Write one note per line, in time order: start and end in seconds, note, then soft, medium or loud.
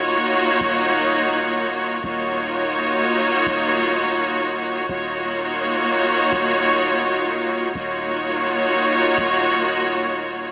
0.00 0.59 D#1 medium
0.00 2.02 A#3 medium
0.00 2.02 D#4 medium
0.00 2.02 F4 medium
0.00 2.02 F#4 medium
0.00 2.02 C#5 medium
0.61 2.02 D#1 medium
2.04 3.45 D#1 medium
2.04 4.88 A#3 medium
2.04 4.88 D#4 medium
2.04 4.88 F4 medium
2.04 4.88 F#4 medium
2.04 4.88 C#5 medium
3.47 4.88 D#1 medium
4.89 6.31 D#1 medium
4.89 7.73 A#3 medium
4.89 7.73 D#4 medium
4.89 7.73 F4 medium
4.89 7.73 F#4 medium
4.89 7.73 C#5 medium
6.32 7.73 D#1 medium
7.75 9.16 D#1 medium
7.75 10.52 A#3 medium
7.75 10.52 D#4 medium
7.75 10.52 F4 medium
7.75 10.52 F#4 medium
7.75 10.52 C#5 medium
9.18 10.52 D#1 medium